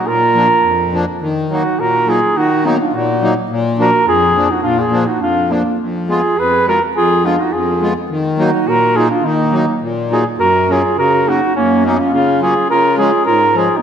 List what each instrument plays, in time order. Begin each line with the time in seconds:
0.07 accordion A#2, clarinet F4, flugelhorn A#4
0.34 accordion F3 A#3 D4
0.62 accordion F2
0.92 accordion F3 A#3 D4
1.22 accordion D#3
1.50 accordion F#3 A#3 D#4, clarinet D#4, flugelhorn F#4
1.79 accordion A#2, clarinet F#4, flugelhorn A#4
2.07 accordion F#3 A#3 D#4, clarinet F4, flugelhorn G#4
2.35 accordion D#3, clarinet D#4, flugelhorn F#4
2.64 accordion F#3 A#3 D#4, clarinet B3, flugelhorn D#4
2.80 clarinet D4, flugelhorn F4
2.93 accordion A#2, clarinet D#4, flugelhorn F#4
3.21 accordion F#3 A#3 D#4
3.50 accordion A#2
3.78 accordion F3 A#3 D4, clarinet F#4, flugelhorn A#4
4.06 accordion F2, clarinet F4, flugelhorn G#4
4.36 accordion F3 A#3 D4
4.50 clarinet D#4, flugelhorn F#4
4.62 accordion A#2, clarinet D4, flugelhorn F4
4.78 clarinet F4, flugelhorn G#4
4.91 accordion F3 A#3 D4
5.07 clarinet D#4, flugelhorn F#4
5.19 accordion F2, clarinet D4, flugelhorn F4
5.49 accordion F3 A#3 D4, clarinet A#3, flugelhorn D4
5.78 accordion F2
6.07 accordion G#3 B3 F4, clarinet F4, flugelhorn G#4
6.37 accordion F2, clarinet G#4, flugelhorn B4
6.66 accordion G#3 B3 F4, clarinet F#4, flugelhorn A#4
6.95 accordion F2, clarinet F4, flugelhorn G#4
7.23 accordion G#3 B3 F4, clarinet D4, flugelhorn F4
7.39 clarinet D#4, flugelhorn F#4
7.52 accordion F2, clarinet F4, flugelhorn G#4
7.81 accordion G#3 B3 F4
8.10 accordion D#3
8.38 accordion F#3 A#3 D#4, clarinet D#4, flugelhorn F#4
8.67 accordion A#2, clarinet F#4, flugelhorn A#4
8.95 accordion F#3 A#3 D#4, clarinet F4, flugelhorn G#4
9.10 clarinet D4, flugelhorn F4
9.23 accordion D#3, clarinet A#3, flugelhorn D#4
9.52 accordion F#3 A#3 D#4
9.81 accordion A#2
10.10 accordion F#3 A#3 D#4, clarinet F4, flugelhorn G#4
10.38 accordion F#2, clarinet F#4, flugelhorn A#4
10.69 accordion F#3 A#3 C#4, clarinet F4, flugelhorn G#4
10.98 accordion C#3, clarinet F#4, flugelhorn A#4
11.27 accordion F#3 A#3 C#4, clarinet D#4, flugelhorn F#4
11.56 accordion F#2, clarinet A#3, flugelhorn C#4
11.84 accordion F#3 A#3 C#4, clarinet B3, flugelhorn D#4
11.99 clarinet C#4, flugelhorn F4
12.12 accordion C#3, clarinet C#4, flugelhorn F4
12.41 accordion F#3 A#3 C#4, clarinet F4, flugelhorn G#4
12.69 accordion C#3, clarinet F4, flugelhorn A#4
12.97 accordion F3 G#3 C#4, clarinet F4, flugelhorn G#4
13.26 accordion G#2, clarinet F4, flugelhorn A#4
13.55 accordion F3 G#3 C#4, clarinet F4, flugelhorn G#4
13.77 clarinet B3, flugelhorn D#4